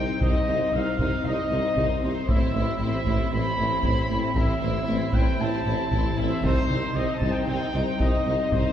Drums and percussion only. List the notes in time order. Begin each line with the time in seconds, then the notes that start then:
0.21 taiko
0.99 taiko
1.77 taiko
2.29 taiko
3.06 taiko
3.83 taiko
4.35 taiko
5.13 taiko
5.91 taiko
6.43 taiko
7.21 taiko
8.00 taiko
8.52 taiko